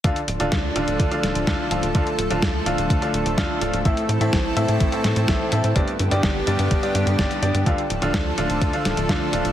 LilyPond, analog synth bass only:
\new Staff \with { instrumentName = "Analog synth bass" } { \clef bass \time 4/4 \key d \dorian \tempo 4 = 126 d,16 r16 d,,16 d,,16 d,8 d,,16 d,,16 d,16 r16 d,,16 d,,16 d,16 r16 d,,16 d,,16 | d,16 r16 d,,16 d,,16 d,8 d,,16 d,,16 d,16 r16 d,,16 d,,16 d,16 r16 d,,16 d,,16 | a,,16 r16 a,16 a,16 a,,8 a,16 a,16 a,,16 r16 a,16 a,16 a,,16 r16 a,16 a,16 | g,,16 r16 g,16 g,16 g,,8 g,16 g,16 g,,16 r16 g,16 g,16 g,,16 r16 g,16 g,16 |
d,16 r16 d,,16 d,,16 d,8 d,,16 d,,16 d,16 r16 d,,16 d,,16 d,16 r16 d,,16 d,,16 | }